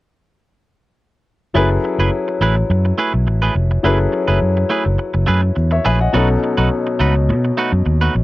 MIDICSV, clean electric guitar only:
0, 0, Header, 1, 3, 480
1, 0, Start_track
1, 0, Tempo, 574163
1, 1295, Time_signature, 4, 2, 24, 8
1, 6885, End_track
2, 0, Start_track
2, 0, Title_t, "Clean electric guitar"
2, 0, Program_c, 0, 27
2, 1295, Note_on_c, 0, 57, 69
2, 1301, Note_on_c, 0, 64, 72
2, 1306, Note_on_c, 0, 68, 74
2, 1310, Note_on_c, 0, 71, 82
2, 1415, Note_off_c, 0, 71, 0
2, 1418, Note_off_c, 0, 68, 0
2, 1421, Note_off_c, 0, 57, 0
2, 1423, Note_off_c, 0, 64, 0
2, 1669, Note_on_c, 0, 71, 59
2, 1673, Note_on_c, 0, 68, 55
2, 1674, Note_on_c, 0, 64, 54
2, 1677, Note_on_c, 0, 57, 50
2, 1753, Note_off_c, 0, 71, 0
2, 1755, Note_off_c, 0, 64, 0
2, 1755, Note_off_c, 0, 68, 0
2, 1757, Note_off_c, 0, 57, 0
2, 2018, Note_on_c, 0, 57, 77
2, 2020, Note_on_c, 0, 64, 82
2, 2025, Note_on_c, 0, 68, 82
2, 2027, Note_on_c, 0, 71, 86
2, 2134, Note_off_c, 0, 71, 0
2, 2140, Note_off_c, 0, 68, 0
2, 2142, Note_off_c, 0, 57, 0
2, 2143, Note_off_c, 0, 64, 0
2, 2490, Note_on_c, 0, 57, 77
2, 2494, Note_on_c, 0, 64, 74
2, 2497, Note_on_c, 0, 68, 79
2, 2500, Note_on_c, 0, 71, 87
2, 2614, Note_off_c, 0, 71, 0
2, 2618, Note_off_c, 0, 57, 0
2, 2618, Note_off_c, 0, 68, 0
2, 2620, Note_off_c, 0, 64, 0
2, 2859, Note_on_c, 0, 71, 61
2, 2865, Note_on_c, 0, 68, 58
2, 2870, Note_on_c, 0, 64, 52
2, 2871, Note_on_c, 0, 57, 58
2, 2959, Note_off_c, 0, 57, 0
2, 2960, Note_off_c, 0, 64, 0
2, 2965, Note_off_c, 0, 68, 0
2, 2968, Note_off_c, 0, 71, 0
2, 3212, Note_on_c, 0, 57, 70
2, 3215, Note_on_c, 0, 64, 67
2, 3219, Note_on_c, 0, 68, 74
2, 3223, Note_on_c, 0, 71, 77
2, 3330, Note_off_c, 0, 71, 0
2, 3335, Note_off_c, 0, 68, 0
2, 3339, Note_off_c, 0, 57, 0
2, 3340, Note_off_c, 0, 64, 0
2, 3576, Note_on_c, 0, 71, 59
2, 3578, Note_on_c, 0, 68, 55
2, 3585, Note_on_c, 0, 64, 48
2, 3589, Note_on_c, 0, 57, 48
2, 3667, Note_off_c, 0, 71, 0
2, 3668, Note_off_c, 0, 68, 0
2, 3671, Note_off_c, 0, 64, 0
2, 3673, Note_off_c, 0, 57, 0
2, 3926, Note_on_c, 0, 57, 83
2, 3932, Note_on_c, 0, 64, 89
2, 3938, Note_on_c, 0, 68, 83
2, 3939, Note_on_c, 0, 71, 82
2, 4044, Note_off_c, 0, 71, 0
2, 4048, Note_off_c, 0, 68, 0
2, 4055, Note_off_c, 0, 64, 0
2, 4057, Note_off_c, 0, 57, 0
2, 4402, Note_on_c, 0, 57, 73
2, 4409, Note_on_c, 0, 64, 66
2, 4412, Note_on_c, 0, 68, 76
2, 4415, Note_on_c, 0, 71, 80
2, 4523, Note_off_c, 0, 71, 0
2, 4526, Note_off_c, 0, 68, 0
2, 4529, Note_off_c, 0, 64, 0
2, 4534, Note_off_c, 0, 57, 0
2, 4888, Note_on_c, 0, 57, 91
2, 4891, Note_on_c, 0, 64, 92
2, 4895, Note_on_c, 0, 68, 97
2, 4896, Note_on_c, 0, 71, 110
2, 5010, Note_off_c, 0, 68, 0
2, 5010, Note_off_c, 0, 71, 0
2, 5015, Note_off_c, 0, 64, 0
2, 5018, Note_off_c, 0, 57, 0
2, 5130, Note_on_c, 0, 57, 88
2, 5132, Note_on_c, 0, 63, 87
2, 5134, Note_on_c, 0, 66, 78
2, 5138, Note_on_c, 0, 71, 89
2, 5254, Note_off_c, 0, 71, 0
2, 5259, Note_off_c, 0, 57, 0
2, 5260, Note_off_c, 0, 63, 0
2, 5261, Note_off_c, 0, 66, 0
2, 5496, Note_on_c, 0, 71, 52
2, 5500, Note_on_c, 0, 66, 54
2, 5505, Note_on_c, 0, 63, 53
2, 5508, Note_on_c, 0, 57, 44
2, 5587, Note_off_c, 0, 71, 0
2, 5589, Note_off_c, 0, 66, 0
2, 5592, Note_off_c, 0, 63, 0
2, 5593, Note_off_c, 0, 57, 0
2, 5848, Note_on_c, 0, 57, 83
2, 5853, Note_on_c, 0, 63, 87
2, 5857, Note_on_c, 0, 66, 82
2, 5859, Note_on_c, 0, 71, 93
2, 5972, Note_off_c, 0, 71, 0
2, 5977, Note_off_c, 0, 66, 0
2, 5978, Note_off_c, 0, 57, 0
2, 5981, Note_off_c, 0, 63, 0
2, 6333, Note_on_c, 0, 57, 82
2, 6335, Note_on_c, 0, 63, 81
2, 6340, Note_on_c, 0, 66, 91
2, 6345, Note_on_c, 0, 71, 82
2, 6452, Note_off_c, 0, 71, 0
2, 6455, Note_off_c, 0, 66, 0
2, 6458, Note_off_c, 0, 63, 0
2, 6461, Note_off_c, 0, 57, 0
2, 6698, Note_on_c, 0, 71, 66
2, 6704, Note_on_c, 0, 66, 70
2, 6707, Note_on_c, 0, 63, 54
2, 6710, Note_on_c, 0, 57, 52
2, 6802, Note_off_c, 0, 57, 0
2, 6806, Note_off_c, 0, 63, 0
2, 6809, Note_off_c, 0, 66, 0
2, 6811, Note_off_c, 0, 71, 0
2, 6885, End_track
3, 0, Start_track
3, 0, Title_t, "Muted clean electric guitar strokes"
3, 1425, Note_on_c, 9, 29, 42
3, 1509, Note_off_c, 9, 29, 0
3, 1540, Note_on_c, 9, 29, 33
3, 1624, Note_off_c, 9, 29, 0
3, 1906, Note_on_c, 9, 29, 36
3, 1990, Note_off_c, 9, 29, 0
3, 2144, Note_on_c, 9, 29, 43
3, 2228, Note_off_c, 9, 29, 0
3, 2259, Note_on_c, 9, 29, 41
3, 2343, Note_off_c, 9, 29, 0
3, 2383, Note_on_c, 9, 29, 32
3, 2466, Note_off_c, 9, 29, 0
3, 2624, Note_on_c, 9, 29, 37
3, 2707, Note_off_c, 9, 29, 0
3, 2733, Note_on_c, 9, 29, 35
3, 2816, Note_off_c, 9, 29, 0
3, 2969, Note_on_c, 9, 29, 41
3, 3053, Note_off_c, 9, 29, 0
3, 3102, Note_on_c, 9, 29, 38
3, 3186, Note_off_c, 9, 29, 0
3, 3340, Note_on_c, 9, 29, 37
3, 3424, Note_off_c, 9, 29, 0
3, 3449, Note_on_c, 9, 29, 33
3, 3532, Note_off_c, 9, 29, 0
3, 3821, Note_on_c, 9, 29, 34
3, 3905, Note_off_c, 9, 29, 0
3, 4054, Note_on_c, 9, 29, 51
3, 4138, Note_off_c, 9, 29, 0
3, 4167, Note_on_c, 9, 29, 41
3, 4251, Note_off_c, 9, 29, 0
3, 4296, Note_on_c, 9, 29, 45
3, 4379, Note_off_c, 9, 29, 0
3, 4533, Note_on_c, 9, 29, 43
3, 4617, Note_off_c, 9, 29, 0
3, 4645, Note_on_c, 9, 29, 30
3, 4729, Note_off_c, 9, 29, 0
3, 4773, Note_on_c, 9, 29, 36
3, 4856, Note_off_c, 9, 29, 0
3, 5264, Note_on_c, 9, 29, 42
3, 5348, Note_off_c, 9, 29, 0
3, 5377, Note_on_c, 9, 29, 35
3, 5461, Note_off_c, 9, 29, 0
3, 5741, Note_on_c, 9, 29, 43
3, 5825, Note_off_c, 9, 29, 0
3, 5982, Note_on_c, 9, 29, 47
3, 6065, Note_off_c, 9, 29, 0
3, 6098, Note_on_c, 9, 29, 42
3, 6182, Note_off_c, 9, 29, 0
3, 6225, Note_on_c, 9, 29, 34
3, 6309, Note_off_c, 9, 29, 0
3, 6567, Note_on_c, 9, 29, 29
3, 6651, Note_off_c, 9, 29, 0
3, 6812, Note_on_c, 9, 29, 43
3, 6885, Note_off_c, 9, 29, 0
3, 6885, End_track
0, 0, End_of_file